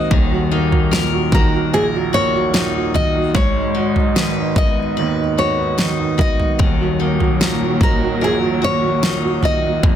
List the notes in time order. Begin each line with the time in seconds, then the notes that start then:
Already playing: D#2 D#3 G#3 C4 D#4 F#4 C5 D#5
0.11 D#1 D#2 D#3, kick, floor tom
0.31 F#3
0.51 A#3 D#4
0.72 F#3, floor tom
0.91 A#2 A#4, snare
1.14 F#3
1.32 D#3 F#4 A#4, kick, floor tom
1.54 F#3
1.73 A#1 A#2 G#4 A#4
1.94 F#3
2.13 A#3 F#4 C#5
2.35 F#3
2.54 A#2 D#4, snare
2.75 F#3
2.94 D#3 F#4 D#5, floor tom
3.15 F#3
3.34 G#1 G#2 G#3 C#5, kick, floor tom
3.56 D#4
3.75 D#4 F#4
3.96 D#4, floor tom
4.16 D#3 B4, snare
4.38 D#4
4.56 B3 F#4 D#5, kick, floor tom
4.79 D#4
4.97 D#2 D#3 B4
5.19 D#4
5.38 F#4 C#5
5.59 D#4
5.78 D#3 D#4, snare
5.99 D#4
6.18 B3 F#4 D#5, kick, floor tom
6.39 D#4, floor tom
6.59 D#1 D#2 A#2 D#3 F#3, kick, floor tom
6.80 F#3
7.00 A#3 D#4
7.20 F#3, floor tom
7.41 A#2 A#4, snare
7.62 F#3
7.81 D#3 F#4 A#4, kick, floor tom
8.03 F#3
8.21 A#1 A#2 G#4 A#4
8.42 F#3
8.62 A#3 F#4 C#5
8.84 F#3
9.03 A#2 D#4, snare
9.25 F#3
9.43 D#3 F#4 D#5, floor tom
9.65 F#3
9.83 F1 F2 D#3 G#3 B3, kick, floor tom